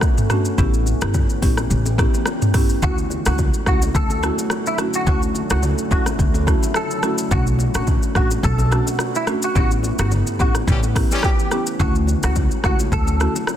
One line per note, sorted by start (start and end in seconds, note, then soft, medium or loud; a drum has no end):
0.00 0.54 D3 medium
0.00 2.79 A3 medium
0.00 2.79 B3 medium
0.00 2.79 C#4 medium
0.00 0.56 F#4 medium
0.00 kick loud
0.00 cross-stick medium
0.00 high bongo medium
0.00 shaker medium
0.18 mid tom medium
0.18 shaker medium
0.30 0.52 A3 medium
0.30 0.52 C#4 medium
0.30 0.52 D4 medium
0.30 0.52 F#4 medium
0.30 cross-stick medium
0.30 mid tom loud
0.30 shaker medium
0.45 shaker medium
0.58 0.92 A1 loud
0.58 2.80 E3 medium
0.58 0.80 B3 medium
0.58 0.80 C#4 medium
0.58 0.80 E4 medium
0.58 2.80 G4 medium
0.58 0.80 G4 loud
0.58 kick loud
0.58 low conga medium
0.58 shaker medium
0.74 shaker medium
0.86 low bongo medium
0.86 shaker medium
1.01 1.23 G1 medium
1.01 1.22 B3 medium
1.01 1.22 C#4 medium
1.01 1.22 E4 medium
1.01 1.22 G4 medium
1.01 cross-stick loud
1.01 shaker medium
1.14 kick loud
1.14 high bongo medium
1.14 low conga medium
1.14 shaker medium
1.30 shaker medium
1.42 1.64 A1 medium
1.42 1.64 B3 medium
1.42 1.64 C#4 medium
1.42 1.64 E4 medium
1.42 1.64 G4 medium
1.42 kick loud
1.42 open hi-hat medium
1.42 shaker soft
1.57 cross-stick medium
1.57 high bongo medium
1.57 low bongo medium
1.57 shaker medium
1.70 2.04 A1 loud
1.70 low conga medium
1.70 shaker medium
1.85 low bongo medium
1.85 shaker medium
1.98 2.20 B3 medium
1.98 2.20 C#4 medium
1.98 2.20 E4 medium
1.98 2.20 G4 medium
1.98 kick medium
1.98 cross-stick medium
1.98 shaker medium
2.14 low bongo medium
2.14 shaker medium
2.26 cross-stick loud
2.26 high bongo medium
2.26 shaker medium
2.42 mid tom loud
2.42 shaker soft
2.54 2.76 B3 medium
2.54 2.76 C#4 medium
2.54 2.76 E4 medium
2.54 2.76 G4 medium
2.54 kick loud
2.54 cross-stick medium
2.54 mid tom loud
2.54 open hi-hat medium
2.54 shaker medium
2.69 shaker medium
2.82 3.16 D2 loud
2.82 9.52 D3 medium
2.82 7.27 F#3 medium
2.82 3.04 A3 medium
2.82 7.27 A3 medium
2.82 3.04 C#4 medium
2.82 9.52 C#4 medium
2.82 3.04 E4 medium
2.82 5.05 F#4 medium
2.82 3.05 F#4 loud
2.82 2.96 F#4 loud
2.82 kick loud
2.82 low conga medium
2.82 shaker medium
2.98 shaker medium
3.10 high bongo medium
3.10 low bongo medium
3.10 shaker medium
3.26 3.48 C#2 medium
3.26 3.46 A3 medium
3.26 3.46 C#4 medium
3.26 3.46 E4 medium
3.26 3.47 F#4 medium
3.26 3.37 F#4 medium
3.26 cross-stick loud
3.26 shaker loud
3.38 kick loud
3.38 high bongo medium
3.38 low conga medium
3.38 shaker medium
3.54 shaker medium
3.66 3.88 C#2 medium
3.66 3.88 A3 medium
3.66 3.88 C#4 medium
3.66 3.88 E4 medium
3.66 3.89 F#4 medium
3.66 3.80 F#4 medium
3.66 kick loud
3.66 cross-stick medium
3.66 shaker soft
3.82 high bongo medium
3.82 low bongo medium
3.82 shaker medium
3.94 4.28 D2 loud
3.94 4.36 A4 loud
3.94 kick loud
3.94 low conga medium
3.94 shaker medium
4.10 low bongo medium
4.10 shaker medium
4.23 4.44 A3 medium
4.23 4.44 C#4 medium
4.23 4.45 E4 medium
4.23 4.45 F#4 medium
4.23 cross-stick medium
4.23 shaker medium
4.38 low bongo medium
4.38 shaker medium
4.50 cross-stick loud
4.50 high bongo medium
4.50 shaker medium
4.66 4.78 E4 medium
4.66 shaker medium
4.78 5.00 A3 medium
4.78 5.01 C#4 medium
4.78 5.01 E4 medium
4.78 5.01 F#4 medium
4.78 cross-stick medium
4.78 shaker medium
4.94 5.06 F#4 medium
4.94 shaker medium
5.07 5.40 D2 loud
5.07 5.29 A3 medium
5.07 5.29 C#4 medium
5.07 7.29 E4 medium
5.07 5.29 E4 medium
5.07 5.29 F#4 loud
5.07 5.21 F#4 loud
5.07 kick loud
5.07 low conga medium
5.07 shaker medium
5.22 shaker medium
5.34 high bongo medium
5.34 low bongo medium
5.34 shaker medium
5.50 5.72 C#2 medium
5.50 5.71 A3 medium
5.50 5.71 C#4 medium
5.50 5.71 E4 medium
5.50 5.71 F#4 medium
5.50 5.62 F#4 medium
5.50 cross-stick loud
5.50 shaker loud
5.63 high bongo medium
5.63 low conga medium
5.63 shaker medium
5.78 shaker medium
5.91 6.13 D2 medium
5.91 6.13 A3 medium
5.91 6.13 C#4 medium
5.91 6.13 E4 medium
5.91 6.13 F#4 medium
5.91 6.05 F#4 medium
5.91 kick loud
5.91 shaker soft
6.06 cross-stick medium
6.06 high bongo medium
6.06 low bongo medium
6.06 shaker medium
6.19 6.52 D2 loud
6.19 kick loud
6.19 low conga medium
6.19 shaker medium
6.34 low bongo medium
6.34 shaker medium
6.47 6.69 A3 medium
6.47 6.69 C#4 medium
6.47 6.69 E4 medium
6.47 6.69 F#4 medium
6.47 kick loud
6.47 cross-stick medium
6.47 shaker medium
6.63 low bongo medium
6.63 shaker medium
6.74 7.17 A4 medium
6.74 cross-stick loud
6.74 high bongo medium
6.74 shaker medium
6.91 shaker medium
7.03 7.25 A3 medium
7.03 7.25 C#4 medium
7.03 7.25 E4 medium
7.03 7.25 F#4 medium
7.03 cross-stick medium
7.03 shaker medium
7.18 shaker loud
7.31 7.65 B1 loud
7.31 7.53 A3 medium
7.31 11.76 A3 medium
7.31 11.76 B3 medium
7.31 7.53 C#4 medium
7.31 7.53 D4 medium
7.31 9.53 F#4 loud
7.31 7.53 F#4 loud
7.31 7.45 F#4 loud
7.31 kick loud
7.31 low conga medium
7.31 shaker medium
7.47 shaker medium
7.59 high bongo medium
7.59 low bongo medium
7.59 shaker medium
7.74 7.96 A1 medium
7.74 7.95 A3 medium
7.74 7.95 C#4 medium
7.74 7.95 D4 medium
7.74 7.95 F#4 medium
7.74 7.86 F#4 medium
7.74 cross-stick loud
7.74 shaker loud
7.87 kick loud
7.87 high bongo medium
7.87 low conga medium
7.87 shaker medium
8.03 shaker medium
8.15 8.37 A1 medium
8.15 8.37 A3 medium
8.15 8.37 C#4 medium
8.15 8.37 D4 medium
8.15 8.37 F#4 medium
8.15 8.29 F#4 medium
8.15 kick loud
8.15 cross-stick medium
8.15 shaker soft
8.31 high bongo medium
8.31 low bongo medium
8.31 shaker medium
8.43 8.77 B1 loud
8.43 8.85 A4 loud
8.43 kick loud
8.43 low conga medium
8.43 shaker medium
8.58 low bongo medium
8.58 shaker medium
8.71 8.93 A3 medium
8.71 8.93 C#4 medium
8.71 8.93 D4 medium
8.71 8.93 F#4 medium
8.71 cross-stick medium
8.71 shaker medium
8.87 low bongo medium
8.87 shaker medium
8.99 cross-stick loud
8.99 high bongo medium
8.99 shaker medium
9.15 9.26 E4 medium
9.15 shaker medium
9.27 9.49 A3 medium
9.27 9.49 C#4 medium
9.27 9.49 D4 medium
9.27 9.49 F#4 medium
9.27 cross-stick medium
9.27 shaker medium
9.42 9.54 F#4 medium
9.42 shaker loud
9.55 9.89 A1 loud
9.55 11.78 E3 medium
9.55 9.77 B3 loud
9.55 13.57 C#4 medium
9.55 9.77 C#4 medium
9.55 9.77 E4 medium
9.55 9.69 F#4 loud
9.55 11.78 G4 medium
9.55 9.77 G4 loud
9.55 kick loud
9.55 low conga medium
9.55 shaker medium
9.71 shaker medium
9.83 high bongo medium
9.83 low bongo medium
9.83 shaker medium
9.99 10.20 G1 medium
9.99 10.19 B3 medium
9.99 10.19 C#4 medium
9.99 10.19 E4 medium
9.99 10.10 F#4 medium
9.99 10.19 G4 medium
9.99 cross-stick loud
9.99 shaker loud
10.11 high bongo medium
10.11 low conga medium
10.11 shaker medium
10.27 shaker medium
10.39 10.61 A1 medium
10.39 10.61 B3 medium
10.39 10.61 C#4 medium
10.39 10.61 E4 medium
10.39 10.53 F#4 medium
10.39 10.62 G4 medium
10.39 kick loud
10.39 shaker soft
10.55 cross-stick medium
10.55 high bongo medium
10.55 low bongo medium
10.55 shaker medium
10.67 11.01 A1 loud
10.67 10.81 E3 medium
10.67 10.81 G3 medium
10.67 10.81 C#4 medium
10.67 10.81 G4 medium
10.67 kick medium
10.67 low conga medium
10.67 shaker medium
10.83 low bongo medium
10.83 shaker medium
10.96 11.17 B3 medium
10.96 11.17 C#4 medium
10.96 11.18 E4 medium
10.96 11.18 G4 medium
10.96 kick loud
10.96 cross-stick loud
10.96 open hi-hat medium
10.96 shaker medium
11.11 11.29 E3 loud
11.11 11.29 G3 loud
11.11 11.29 C#4 medium
11.11 11.29 G4 loud
11.11 low bongo medium
11.11 shaker medium
11.23 11.65 G4 medium
11.23 kick loud
11.23 cross-stick loud
11.23 high bongo medium
11.23 shaker medium
11.39 shaker medium
11.51 11.73 B3 medium
11.51 11.73 C#4 medium
11.51 11.74 E4 medium
11.51 11.74 G4 medium
11.51 cross-stick medium
11.51 shaker medium
11.67 shaker loud
11.79 12.13 D2 loud
11.79 13.57 D3 medium
11.79 13.57 F#3 medium
11.79 12.01 A3 medium
11.79 13.57 A3 medium
11.79 12.01 C#4 medium
11.79 12.02 E4 medium
11.79 13.57 F#4 medium
11.79 12.02 F#4 loud
11.79 11.94 F#4 loud
11.79 kick loud
11.79 low conga medium
11.79 shaker medium
11.95 shaker medium
12.07 high bongo medium
12.07 low bongo medium
12.07 shaker medium
12.23 12.45 C#2 medium
12.23 12.43 A3 medium
12.23 12.44 C#4 medium
12.23 12.44 E4 medium
12.23 12.44 F#4 medium
12.23 12.35 F#4 medium
12.23 cross-stick loud
12.23 shaker loud
12.36 kick loud
12.36 high bongo medium
12.36 low conga medium
12.36 shaker medium
12.51 shaker medium
12.64 12.86 C#2 medium
12.64 12.86 A3 medium
12.64 12.86 C#4 medium
12.64 12.86 E4 medium
12.64 12.86 F#4 medium
12.64 12.78 F#4 medium
12.64 kick loud
12.64 cross-stick loud
12.64 shaker soft
12.79 high bongo medium
12.79 low bongo medium
12.79 shaker medium
12.92 13.25 D2 loud
12.92 13.33 A4 loud
12.92 kick loud
12.92 low conga medium
12.92 shaker medium
13.07 low bongo medium
13.07 shaker medium
13.20 13.42 A3 medium
13.20 13.42 C#4 medium
13.20 13.42 E4 medium
13.20 13.42 F#4 medium
13.20 cross-stick medium
13.20 shaker medium
13.36 low bongo medium
13.36 shaker medium
13.47 cross-stick medium
13.47 high bongo medium
13.47 shaker medium